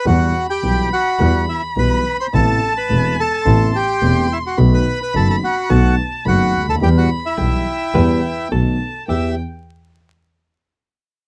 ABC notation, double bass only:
X:1
M:4/4
L:1/8
Q:1/4=107
K:Em
V:1 name="Double bass" clef=bass
E,, z B,,, z E,, z B,,, z | A,,, z E,,, z A,,, z E,,, z | B,,, z F,,, z B,,, z F,,, D,, | E,, z B,,, z E,, z B,,, z |
E,, z6 z |]